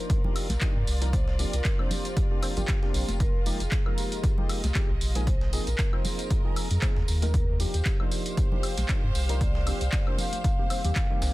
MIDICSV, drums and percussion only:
0, 0, Header, 1, 2, 480
1, 0, Start_track
1, 0, Tempo, 517241
1, 1051, Time_signature, 4, 2, 24, 8
1, 10519, End_track
2, 0, Start_track
2, 0, Title_t, "Drums"
2, 91, Note_on_c, 9, 36, 127
2, 91, Note_on_c, 9, 42, 50
2, 91, Note_on_c, 9, 54, 33
2, 92, Note_off_c, 9, 42, 0
2, 92, Note_on_c, 9, 42, 90
2, 183, Note_off_c, 9, 36, 0
2, 184, Note_off_c, 9, 42, 0
2, 184, Note_off_c, 9, 54, 0
2, 227, Note_on_c, 9, 64, 100
2, 319, Note_off_c, 9, 64, 0
2, 331, Note_on_c, 9, 46, 114
2, 331, Note_on_c, 9, 54, 78
2, 331, Note_on_c, 9, 76, 81
2, 332, Note_on_c, 9, 42, 70
2, 424, Note_off_c, 9, 46, 0
2, 424, Note_off_c, 9, 54, 0
2, 424, Note_off_c, 9, 76, 0
2, 425, Note_off_c, 9, 42, 0
2, 458, Note_on_c, 9, 64, 81
2, 463, Note_on_c, 9, 42, 66
2, 463, Note_on_c, 9, 54, 43
2, 464, Note_on_c, 9, 63, 96
2, 465, Note_on_c, 9, 38, 56
2, 551, Note_off_c, 9, 64, 0
2, 556, Note_off_c, 9, 42, 0
2, 556, Note_off_c, 9, 54, 0
2, 557, Note_off_c, 9, 38, 0
2, 557, Note_off_c, 9, 63, 0
2, 567, Note_on_c, 9, 39, 127
2, 571, Note_on_c, 9, 36, 109
2, 571, Note_on_c, 9, 42, 52
2, 571, Note_on_c, 9, 54, 33
2, 572, Note_off_c, 9, 42, 0
2, 572, Note_on_c, 9, 38, 115
2, 572, Note_on_c, 9, 42, 86
2, 659, Note_off_c, 9, 39, 0
2, 663, Note_off_c, 9, 36, 0
2, 664, Note_off_c, 9, 38, 0
2, 664, Note_off_c, 9, 42, 0
2, 664, Note_off_c, 9, 54, 0
2, 811, Note_on_c, 9, 46, 105
2, 811, Note_on_c, 9, 54, 79
2, 812, Note_on_c, 9, 42, 70
2, 904, Note_off_c, 9, 42, 0
2, 904, Note_off_c, 9, 46, 0
2, 904, Note_off_c, 9, 54, 0
2, 943, Note_on_c, 9, 42, 66
2, 943, Note_on_c, 9, 54, 41
2, 944, Note_on_c, 9, 38, 45
2, 1036, Note_off_c, 9, 42, 0
2, 1036, Note_off_c, 9, 54, 0
2, 1037, Note_off_c, 9, 38, 0
2, 1050, Note_on_c, 9, 36, 122
2, 1051, Note_on_c, 9, 42, 48
2, 1051, Note_on_c, 9, 54, 32
2, 1052, Note_off_c, 9, 42, 0
2, 1052, Note_on_c, 9, 42, 90
2, 1052, Note_on_c, 9, 63, 71
2, 1143, Note_off_c, 9, 36, 0
2, 1144, Note_off_c, 9, 54, 0
2, 1144, Note_off_c, 9, 63, 0
2, 1145, Note_off_c, 9, 42, 0
2, 1184, Note_on_c, 9, 38, 61
2, 1277, Note_off_c, 9, 38, 0
2, 1291, Note_on_c, 9, 42, 65
2, 1291, Note_on_c, 9, 46, 108
2, 1291, Note_on_c, 9, 54, 80
2, 1384, Note_off_c, 9, 42, 0
2, 1384, Note_off_c, 9, 46, 0
2, 1384, Note_off_c, 9, 54, 0
2, 1424, Note_on_c, 9, 42, 64
2, 1424, Note_on_c, 9, 54, 45
2, 1516, Note_off_c, 9, 42, 0
2, 1517, Note_off_c, 9, 54, 0
2, 1527, Note_on_c, 9, 39, 119
2, 1530, Note_on_c, 9, 36, 114
2, 1531, Note_on_c, 9, 38, 120
2, 1531, Note_on_c, 9, 42, 50
2, 1531, Note_on_c, 9, 54, 31
2, 1620, Note_off_c, 9, 39, 0
2, 1623, Note_off_c, 9, 36, 0
2, 1624, Note_off_c, 9, 38, 0
2, 1624, Note_off_c, 9, 42, 0
2, 1624, Note_off_c, 9, 54, 0
2, 1663, Note_on_c, 9, 76, 83
2, 1756, Note_off_c, 9, 76, 0
2, 1771, Note_on_c, 9, 42, 68
2, 1771, Note_on_c, 9, 46, 101
2, 1771, Note_on_c, 9, 54, 79
2, 1771, Note_on_c, 9, 64, 85
2, 1863, Note_off_c, 9, 64, 0
2, 1864, Note_off_c, 9, 42, 0
2, 1864, Note_off_c, 9, 46, 0
2, 1864, Note_off_c, 9, 54, 0
2, 1903, Note_on_c, 9, 42, 63
2, 1903, Note_on_c, 9, 54, 43
2, 1904, Note_off_c, 9, 42, 0
2, 1904, Note_on_c, 9, 42, 44
2, 1996, Note_off_c, 9, 54, 0
2, 1997, Note_off_c, 9, 42, 0
2, 2010, Note_on_c, 9, 36, 121
2, 2011, Note_on_c, 9, 42, 51
2, 2011, Note_on_c, 9, 54, 33
2, 2103, Note_off_c, 9, 36, 0
2, 2104, Note_off_c, 9, 42, 0
2, 2104, Note_off_c, 9, 54, 0
2, 2251, Note_on_c, 9, 42, 68
2, 2251, Note_on_c, 9, 46, 118
2, 2251, Note_on_c, 9, 54, 77
2, 2251, Note_on_c, 9, 76, 86
2, 2344, Note_off_c, 9, 42, 0
2, 2344, Note_off_c, 9, 46, 0
2, 2344, Note_off_c, 9, 54, 0
2, 2344, Note_off_c, 9, 76, 0
2, 2383, Note_on_c, 9, 42, 63
2, 2383, Note_on_c, 9, 54, 44
2, 2388, Note_on_c, 9, 64, 79
2, 2476, Note_off_c, 9, 42, 0
2, 2476, Note_off_c, 9, 54, 0
2, 2480, Note_off_c, 9, 64, 0
2, 2486, Note_on_c, 9, 39, 124
2, 2490, Note_on_c, 9, 36, 110
2, 2490, Note_on_c, 9, 38, 121
2, 2490, Note_on_c, 9, 42, 91
2, 2491, Note_off_c, 9, 42, 0
2, 2491, Note_on_c, 9, 42, 51
2, 2579, Note_off_c, 9, 39, 0
2, 2583, Note_off_c, 9, 36, 0
2, 2583, Note_off_c, 9, 38, 0
2, 2584, Note_off_c, 9, 42, 0
2, 2623, Note_on_c, 9, 38, 56
2, 2716, Note_off_c, 9, 38, 0
2, 2731, Note_on_c, 9, 42, 68
2, 2731, Note_on_c, 9, 46, 99
2, 2731, Note_on_c, 9, 54, 78
2, 2824, Note_off_c, 9, 42, 0
2, 2824, Note_off_c, 9, 46, 0
2, 2824, Note_off_c, 9, 54, 0
2, 2862, Note_on_c, 9, 63, 88
2, 2863, Note_on_c, 9, 38, 43
2, 2863, Note_on_c, 9, 42, 62
2, 2863, Note_on_c, 9, 54, 45
2, 2955, Note_off_c, 9, 63, 0
2, 2956, Note_off_c, 9, 38, 0
2, 2956, Note_off_c, 9, 42, 0
2, 2956, Note_off_c, 9, 54, 0
2, 2970, Note_on_c, 9, 36, 122
2, 2971, Note_on_c, 9, 42, 95
2, 2971, Note_on_c, 9, 54, 34
2, 3063, Note_off_c, 9, 36, 0
2, 3064, Note_off_c, 9, 42, 0
2, 3064, Note_off_c, 9, 54, 0
2, 3211, Note_on_c, 9, 42, 68
2, 3211, Note_on_c, 9, 46, 106
2, 3211, Note_on_c, 9, 54, 84
2, 3303, Note_off_c, 9, 42, 0
2, 3304, Note_off_c, 9, 46, 0
2, 3304, Note_off_c, 9, 54, 0
2, 3343, Note_on_c, 9, 42, 62
2, 3344, Note_on_c, 9, 54, 45
2, 3436, Note_off_c, 9, 42, 0
2, 3436, Note_off_c, 9, 54, 0
2, 3447, Note_on_c, 9, 39, 113
2, 3451, Note_on_c, 9, 36, 109
2, 3451, Note_on_c, 9, 38, 118
2, 3451, Note_on_c, 9, 42, 89
2, 3452, Note_off_c, 9, 42, 0
2, 3452, Note_on_c, 9, 42, 50
2, 3452, Note_on_c, 9, 54, 32
2, 3540, Note_off_c, 9, 39, 0
2, 3543, Note_off_c, 9, 36, 0
2, 3543, Note_off_c, 9, 38, 0
2, 3544, Note_off_c, 9, 42, 0
2, 3544, Note_off_c, 9, 54, 0
2, 3583, Note_on_c, 9, 76, 84
2, 3676, Note_off_c, 9, 76, 0
2, 3691, Note_on_c, 9, 42, 69
2, 3691, Note_on_c, 9, 46, 95
2, 3691, Note_on_c, 9, 54, 83
2, 3784, Note_off_c, 9, 42, 0
2, 3784, Note_off_c, 9, 46, 0
2, 3784, Note_off_c, 9, 54, 0
2, 3823, Note_on_c, 9, 42, 65
2, 3823, Note_on_c, 9, 54, 46
2, 3916, Note_off_c, 9, 42, 0
2, 3916, Note_off_c, 9, 54, 0
2, 3930, Note_on_c, 9, 36, 121
2, 3931, Note_on_c, 9, 42, 89
2, 3931, Note_on_c, 9, 54, 34
2, 4023, Note_off_c, 9, 36, 0
2, 4024, Note_off_c, 9, 42, 0
2, 4024, Note_off_c, 9, 54, 0
2, 4063, Note_on_c, 9, 64, 87
2, 4155, Note_off_c, 9, 64, 0
2, 4171, Note_on_c, 9, 42, 71
2, 4171, Note_on_c, 9, 46, 110
2, 4171, Note_on_c, 9, 54, 83
2, 4171, Note_on_c, 9, 76, 84
2, 4263, Note_off_c, 9, 46, 0
2, 4263, Note_off_c, 9, 76, 0
2, 4264, Note_off_c, 9, 42, 0
2, 4264, Note_off_c, 9, 54, 0
2, 4302, Note_on_c, 9, 64, 70
2, 4303, Note_on_c, 9, 38, 59
2, 4304, Note_on_c, 9, 42, 60
2, 4304, Note_on_c, 9, 54, 46
2, 4305, Note_on_c, 9, 63, 92
2, 4394, Note_off_c, 9, 64, 0
2, 4396, Note_off_c, 9, 38, 0
2, 4396, Note_off_c, 9, 42, 0
2, 4396, Note_off_c, 9, 54, 0
2, 4398, Note_off_c, 9, 63, 0
2, 4406, Note_on_c, 9, 39, 120
2, 4411, Note_on_c, 9, 36, 102
2, 4411, Note_on_c, 9, 38, 122
2, 4411, Note_on_c, 9, 42, 94
2, 4411, Note_on_c, 9, 54, 35
2, 4499, Note_off_c, 9, 39, 0
2, 4503, Note_off_c, 9, 36, 0
2, 4504, Note_off_c, 9, 38, 0
2, 4504, Note_off_c, 9, 42, 0
2, 4504, Note_off_c, 9, 54, 0
2, 4650, Note_on_c, 9, 46, 98
2, 4650, Note_on_c, 9, 54, 84
2, 4652, Note_on_c, 9, 42, 67
2, 4743, Note_off_c, 9, 46, 0
2, 4743, Note_off_c, 9, 54, 0
2, 4745, Note_off_c, 9, 42, 0
2, 4782, Note_on_c, 9, 42, 64
2, 4782, Note_on_c, 9, 54, 47
2, 4784, Note_on_c, 9, 38, 46
2, 4875, Note_off_c, 9, 42, 0
2, 4875, Note_off_c, 9, 54, 0
2, 4877, Note_off_c, 9, 38, 0
2, 4890, Note_on_c, 9, 36, 117
2, 4891, Note_on_c, 9, 42, 51
2, 4891, Note_on_c, 9, 54, 36
2, 4892, Note_off_c, 9, 42, 0
2, 4892, Note_on_c, 9, 42, 92
2, 4892, Note_on_c, 9, 63, 66
2, 4983, Note_off_c, 9, 36, 0
2, 4983, Note_off_c, 9, 54, 0
2, 4984, Note_off_c, 9, 42, 0
2, 4985, Note_off_c, 9, 63, 0
2, 5024, Note_on_c, 9, 38, 59
2, 5117, Note_off_c, 9, 38, 0
2, 5131, Note_on_c, 9, 42, 67
2, 5131, Note_on_c, 9, 46, 105
2, 5131, Note_on_c, 9, 54, 85
2, 5223, Note_off_c, 9, 46, 0
2, 5224, Note_off_c, 9, 42, 0
2, 5224, Note_off_c, 9, 54, 0
2, 5263, Note_on_c, 9, 42, 65
2, 5263, Note_on_c, 9, 54, 46
2, 5355, Note_off_c, 9, 42, 0
2, 5356, Note_off_c, 9, 54, 0
2, 5367, Note_on_c, 9, 39, 118
2, 5371, Note_on_c, 9, 36, 104
2, 5371, Note_on_c, 9, 38, 114
2, 5371, Note_on_c, 9, 42, 94
2, 5371, Note_on_c, 9, 54, 34
2, 5459, Note_off_c, 9, 39, 0
2, 5463, Note_off_c, 9, 36, 0
2, 5464, Note_off_c, 9, 38, 0
2, 5464, Note_off_c, 9, 42, 0
2, 5464, Note_off_c, 9, 54, 0
2, 5503, Note_on_c, 9, 76, 87
2, 5596, Note_off_c, 9, 76, 0
2, 5611, Note_on_c, 9, 46, 95
2, 5611, Note_on_c, 9, 54, 82
2, 5612, Note_on_c, 9, 42, 69
2, 5614, Note_on_c, 9, 64, 81
2, 5704, Note_off_c, 9, 46, 0
2, 5704, Note_off_c, 9, 54, 0
2, 5705, Note_off_c, 9, 42, 0
2, 5707, Note_off_c, 9, 64, 0
2, 5744, Note_on_c, 9, 42, 44
2, 5744, Note_on_c, 9, 54, 50
2, 5836, Note_off_c, 9, 54, 0
2, 5837, Note_off_c, 9, 42, 0
2, 5851, Note_on_c, 9, 36, 108
2, 5851, Note_on_c, 9, 42, 54
2, 5851, Note_on_c, 9, 54, 35
2, 5943, Note_off_c, 9, 36, 0
2, 5944, Note_off_c, 9, 42, 0
2, 5944, Note_off_c, 9, 54, 0
2, 6091, Note_on_c, 9, 46, 112
2, 6091, Note_on_c, 9, 54, 84
2, 6091, Note_on_c, 9, 76, 86
2, 6092, Note_on_c, 9, 42, 69
2, 6184, Note_off_c, 9, 46, 0
2, 6184, Note_off_c, 9, 54, 0
2, 6184, Note_off_c, 9, 76, 0
2, 6185, Note_off_c, 9, 42, 0
2, 6224, Note_on_c, 9, 42, 65
2, 6224, Note_on_c, 9, 54, 48
2, 6230, Note_on_c, 9, 64, 75
2, 6316, Note_off_c, 9, 42, 0
2, 6316, Note_off_c, 9, 54, 0
2, 6322, Note_off_c, 9, 64, 0
2, 6327, Note_on_c, 9, 39, 118
2, 6331, Note_on_c, 9, 36, 105
2, 6331, Note_on_c, 9, 38, 117
2, 6331, Note_on_c, 9, 42, 54
2, 6331, Note_on_c, 9, 54, 36
2, 6420, Note_off_c, 9, 39, 0
2, 6423, Note_off_c, 9, 36, 0
2, 6424, Note_off_c, 9, 38, 0
2, 6424, Note_off_c, 9, 42, 0
2, 6424, Note_off_c, 9, 54, 0
2, 6463, Note_on_c, 9, 38, 56
2, 6556, Note_off_c, 9, 38, 0
2, 6571, Note_on_c, 9, 42, 67
2, 6571, Note_on_c, 9, 46, 91
2, 6571, Note_on_c, 9, 54, 89
2, 6664, Note_off_c, 9, 42, 0
2, 6664, Note_off_c, 9, 46, 0
2, 6664, Note_off_c, 9, 54, 0
2, 6703, Note_on_c, 9, 42, 66
2, 6703, Note_on_c, 9, 54, 47
2, 6704, Note_on_c, 9, 38, 45
2, 6704, Note_on_c, 9, 63, 82
2, 6796, Note_off_c, 9, 38, 0
2, 6796, Note_off_c, 9, 42, 0
2, 6796, Note_off_c, 9, 54, 0
2, 6796, Note_off_c, 9, 63, 0
2, 6811, Note_on_c, 9, 36, 115
2, 6811, Note_on_c, 9, 42, 96
2, 6811, Note_on_c, 9, 54, 35
2, 6811, Note_on_c, 9, 63, 67
2, 6903, Note_off_c, 9, 36, 0
2, 6904, Note_off_c, 9, 42, 0
2, 6904, Note_off_c, 9, 54, 0
2, 6904, Note_off_c, 9, 63, 0
2, 7051, Note_on_c, 9, 42, 70
2, 7051, Note_on_c, 9, 46, 107
2, 7051, Note_on_c, 9, 54, 88
2, 7144, Note_off_c, 9, 42, 0
2, 7144, Note_off_c, 9, 46, 0
2, 7144, Note_off_c, 9, 54, 0
2, 7183, Note_on_c, 9, 42, 69
2, 7183, Note_on_c, 9, 54, 49
2, 7276, Note_off_c, 9, 42, 0
2, 7276, Note_off_c, 9, 54, 0
2, 7287, Note_on_c, 9, 39, 112
2, 7291, Note_on_c, 9, 36, 108
2, 7291, Note_on_c, 9, 38, 114
2, 7291, Note_on_c, 9, 42, 53
2, 7291, Note_on_c, 9, 54, 37
2, 7379, Note_off_c, 9, 39, 0
2, 7383, Note_off_c, 9, 36, 0
2, 7384, Note_off_c, 9, 38, 0
2, 7384, Note_off_c, 9, 42, 0
2, 7384, Note_off_c, 9, 54, 0
2, 7423, Note_on_c, 9, 76, 87
2, 7516, Note_off_c, 9, 76, 0
2, 7531, Note_on_c, 9, 46, 93
2, 7531, Note_on_c, 9, 54, 86
2, 7532, Note_on_c, 9, 42, 65
2, 7624, Note_off_c, 9, 46, 0
2, 7624, Note_off_c, 9, 54, 0
2, 7625, Note_off_c, 9, 42, 0
2, 7663, Note_on_c, 9, 42, 71
2, 7664, Note_on_c, 9, 54, 49
2, 7756, Note_off_c, 9, 42, 0
2, 7756, Note_off_c, 9, 54, 0
2, 7771, Note_on_c, 9, 36, 114
2, 7771, Note_on_c, 9, 42, 92
2, 7772, Note_off_c, 9, 42, 0
2, 7772, Note_on_c, 9, 42, 56
2, 7772, Note_on_c, 9, 54, 36
2, 7864, Note_off_c, 9, 36, 0
2, 7864, Note_off_c, 9, 42, 0
2, 7865, Note_off_c, 9, 54, 0
2, 7906, Note_on_c, 9, 64, 86
2, 7999, Note_off_c, 9, 64, 0
2, 8011, Note_on_c, 9, 46, 103
2, 8011, Note_on_c, 9, 54, 85
2, 8011, Note_on_c, 9, 76, 84
2, 8012, Note_on_c, 9, 42, 72
2, 8104, Note_off_c, 9, 42, 0
2, 8104, Note_off_c, 9, 46, 0
2, 8104, Note_off_c, 9, 54, 0
2, 8104, Note_off_c, 9, 76, 0
2, 8143, Note_on_c, 9, 38, 59
2, 8143, Note_on_c, 9, 42, 72
2, 8143, Note_on_c, 9, 54, 47
2, 8143, Note_on_c, 9, 63, 80
2, 8145, Note_on_c, 9, 64, 77
2, 8236, Note_off_c, 9, 38, 0
2, 8236, Note_off_c, 9, 42, 0
2, 8236, Note_off_c, 9, 54, 0
2, 8236, Note_off_c, 9, 63, 0
2, 8238, Note_off_c, 9, 64, 0
2, 8247, Note_on_c, 9, 39, 119
2, 8251, Note_on_c, 9, 36, 97
2, 8251, Note_on_c, 9, 38, 121
2, 8251, Note_on_c, 9, 42, 58
2, 8340, Note_off_c, 9, 39, 0
2, 8344, Note_off_c, 9, 36, 0
2, 8344, Note_off_c, 9, 38, 0
2, 8344, Note_off_c, 9, 42, 0
2, 8491, Note_on_c, 9, 46, 95
2, 8491, Note_on_c, 9, 54, 88
2, 8492, Note_on_c, 9, 42, 69
2, 8584, Note_off_c, 9, 42, 0
2, 8584, Note_off_c, 9, 46, 0
2, 8584, Note_off_c, 9, 54, 0
2, 8623, Note_on_c, 9, 42, 66
2, 8624, Note_on_c, 9, 38, 46
2, 8624, Note_on_c, 9, 54, 47
2, 8716, Note_off_c, 9, 38, 0
2, 8716, Note_off_c, 9, 42, 0
2, 8716, Note_off_c, 9, 54, 0
2, 8729, Note_on_c, 9, 63, 59
2, 8731, Note_on_c, 9, 36, 113
2, 8731, Note_on_c, 9, 42, 59
2, 8731, Note_on_c, 9, 54, 35
2, 8732, Note_off_c, 9, 42, 0
2, 8732, Note_on_c, 9, 42, 91
2, 8822, Note_off_c, 9, 63, 0
2, 8824, Note_off_c, 9, 36, 0
2, 8824, Note_off_c, 9, 42, 0
2, 8824, Note_off_c, 9, 54, 0
2, 8864, Note_on_c, 9, 38, 62
2, 8957, Note_off_c, 9, 38, 0
2, 8971, Note_on_c, 9, 42, 72
2, 8971, Note_on_c, 9, 46, 102
2, 8971, Note_on_c, 9, 54, 86
2, 8971, Note_on_c, 9, 76, 87
2, 9064, Note_off_c, 9, 42, 0
2, 9064, Note_off_c, 9, 46, 0
2, 9064, Note_off_c, 9, 54, 0
2, 9064, Note_off_c, 9, 76, 0
2, 9104, Note_on_c, 9, 42, 74
2, 9104, Note_on_c, 9, 54, 49
2, 9196, Note_off_c, 9, 42, 0
2, 9196, Note_off_c, 9, 54, 0
2, 9207, Note_on_c, 9, 39, 123
2, 9211, Note_on_c, 9, 36, 111
2, 9211, Note_on_c, 9, 38, 125
2, 9211, Note_on_c, 9, 42, 88
2, 9212, Note_off_c, 9, 42, 0
2, 9212, Note_on_c, 9, 42, 53
2, 9212, Note_on_c, 9, 54, 34
2, 9300, Note_off_c, 9, 39, 0
2, 9304, Note_off_c, 9, 36, 0
2, 9304, Note_off_c, 9, 38, 0
2, 9304, Note_off_c, 9, 42, 0
2, 9304, Note_off_c, 9, 54, 0
2, 9344, Note_on_c, 9, 76, 81
2, 9437, Note_off_c, 9, 76, 0
2, 9448, Note_on_c, 9, 64, 84
2, 9452, Note_on_c, 9, 42, 67
2, 9452, Note_on_c, 9, 46, 97
2, 9452, Note_on_c, 9, 54, 85
2, 9540, Note_off_c, 9, 64, 0
2, 9544, Note_off_c, 9, 42, 0
2, 9545, Note_off_c, 9, 46, 0
2, 9545, Note_off_c, 9, 54, 0
2, 9583, Note_on_c, 9, 63, 59
2, 9584, Note_on_c, 9, 42, 70
2, 9584, Note_on_c, 9, 54, 45
2, 9676, Note_off_c, 9, 63, 0
2, 9677, Note_off_c, 9, 42, 0
2, 9677, Note_off_c, 9, 54, 0
2, 9691, Note_on_c, 9, 36, 113
2, 9691, Note_on_c, 9, 42, 85
2, 9692, Note_off_c, 9, 42, 0
2, 9692, Note_on_c, 9, 42, 58
2, 9692, Note_on_c, 9, 54, 36
2, 9784, Note_off_c, 9, 36, 0
2, 9785, Note_off_c, 9, 42, 0
2, 9785, Note_off_c, 9, 54, 0
2, 9931, Note_on_c, 9, 42, 70
2, 9932, Note_on_c, 9, 46, 111
2, 9932, Note_on_c, 9, 54, 85
2, 9932, Note_on_c, 9, 76, 85
2, 10024, Note_off_c, 9, 42, 0
2, 10025, Note_off_c, 9, 46, 0
2, 10025, Note_off_c, 9, 54, 0
2, 10025, Note_off_c, 9, 76, 0
2, 10063, Note_on_c, 9, 64, 84
2, 10064, Note_on_c, 9, 42, 70
2, 10064, Note_on_c, 9, 54, 46
2, 10156, Note_off_c, 9, 64, 0
2, 10157, Note_off_c, 9, 42, 0
2, 10157, Note_off_c, 9, 54, 0
2, 10167, Note_on_c, 9, 39, 126
2, 10171, Note_on_c, 9, 36, 102
2, 10171, Note_on_c, 9, 38, 113
2, 10171, Note_on_c, 9, 42, 78
2, 10172, Note_off_c, 9, 42, 0
2, 10172, Note_on_c, 9, 42, 57
2, 10172, Note_on_c, 9, 54, 38
2, 10260, Note_off_c, 9, 39, 0
2, 10264, Note_off_c, 9, 36, 0
2, 10264, Note_off_c, 9, 38, 0
2, 10265, Note_off_c, 9, 42, 0
2, 10265, Note_off_c, 9, 54, 0
2, 10411, Note_on_c, 9, 38, 108
2, 10411, Note_on_c, 9, 42, 80
2, 10411, Note_on_c, 9, 46, 99
2, 10411, Note_on_c, 9, 54, 85
2, 10504, Note_off_c, 9, 38, 0
2, 10504, Note_off_c, 9, 42, 0
2, 10504, Note_off_c, 9, 46, 0
2, 10504, Note_off_c, 9, 54, 0
2, 10519, End_track
0, 0, End_of_file